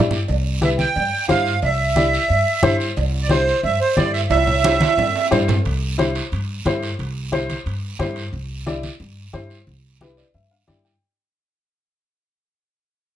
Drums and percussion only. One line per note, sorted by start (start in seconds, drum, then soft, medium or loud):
0.11 low conga medium
0.11 short guiro medium
0.28 cowbell loud
0.28 long guiro medium
0.62 cowbell medium
0.62 high conga medium
0.62 short guiro medium
0.79 high conga medium
0.79 short guiro medium
0.96 cowbell medium
0.96 long guiro medium
1.29 cowbell medium
1.29 high conga medium
1.29 short guiro medium
1.46 short guiro medium
1.62 cowbell loud
1.62 long guiro medium
1.96 cowbell medium
1.96 high conga medium
1.96 short guiro medium
2.13 short guiro medium
2.28 cowbell medium
2.28 long guiro medium
2.63 cowbell medium
2.63 high conga medium
2.63 low conga medium
2.63 short guiro medium
2.80 short guiro medium
2.97 cowbell loud
2.97 long guiro medium
3.29 cowbell medium
3.29 high conga medium
3.29 short guiro medium
3.48 short guiro medium
3.63 cowbell medium
3.63 long guiro medium
3.97 cowbell medium
3.97 high conga medium
3.97 low timbale medium
3.97 short guiro medium
4.14 short guiro medium
4.31 cowbell loud
4.31 high timbale medium
4.31 long guiro medium
4.47 low conga medium
4.47 high timbale medium
4.64 cowbell medium
4.64 high conga medium
4.64 high timbale loud
4.64 short guiro medium
4.81 high conga loud
4.81 high timbale loud
4.81 short guiro medium
4.98 cowbell medium
4.98 low conga medium
4.98 low timbale medium
4.98 long guiro medium
5.16 low timbale medium
5.31 cowbell medium
5.31 low conga medium
5.31 low timbale medium
5.31 short guiro medium
5.48 low conga loud
5.48 low timbale medium
5.48 short guiro medium
5.65 high timbale medium
5.65 long guiro medium
5.99 high conga medium
5.99 high timbale medium
5.99 short guiro medium
6.15 high timbale medium
6.15 short guiro medium
6.32 high timbale medium
6.32 long guiro medium
6.65 high conga medium
6.65 high timbale medium
6.65 low timbale medium
6.65 short guiro medium
6.83 high timbale medium
6.83 short guiro medium
6.99 high timbale medium
6.99 long guiro medium
7.33 high conga medium
7.33 high timbale medium
7.33 short guiro medium
7.50 high conga medium
7.50 high timbale medium
7.50 short guiro medium
7.67 high timbale medium
7.67 long guiro medium
8.00 high conga medium
8.00 high timbale medium
8.00 low timbale medium
8.00 short guiro medium
8.16 high timbale medium
8.16 short guiro medium
8.34 long guiro medium
8.67 high conga medium
8.67 short guiro medium
8.83 high conga medium
8.83 short guiro medium
9.00 long guiro medium
9.33 high conga medium
9.33 short guiro medium
9.50 short guiro medium
9.67 long guiro medium
10.01 high conga medium
10.01 short guiro medium
10.17 short guiro medium
10.34 long guiro medium
10.68 high conga medium
10.68 short guiro medium
10.85 short guiro medium